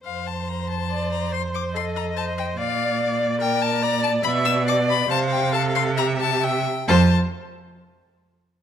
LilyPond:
<<
  \new Staff \with { instrumentName = "Violin" } { \time 4/4 \key f \major \tempo 4 = 140 f''8 a''8 bes''8 a''4 bes''8 c'''8 d'''8 | c'''8 bes''8 a''8 g''8 f''4. r8 | g''8 a''8 bes''8 a''8 b''8 e'''8 d'''8 b''8 | a''8 g''8 a''8 c'''8 bes''8 a''8 g''4 |
a''8 r2. r8 | }
  \new Staff \with { instrumentName = "Violin" } { \time 4/4 \key f \major c''1 | ees''2 d''2~ | d''1 | f''2 e''4. r8 |
c''8 r2. r8 | }
  \new Staff \with { instrumentName = "Viola" } { \time 4/4 \key f \major r2 d''4 c''4 | a'4 c''4 d''2 | bes'4 d''4 e''4 d''4 | c''4 a'4 g'4 e''8 r8 |
f'8 r2. r8 | }
  \new Staff \with { instrumentName = "Cello" } { \clef bass \time 4/4 \key f \major f,1~ | f,2 bes,2~ | bes,2 b,2 | c2.~ c8 r8 |
f,8 r2. r8 | }
>>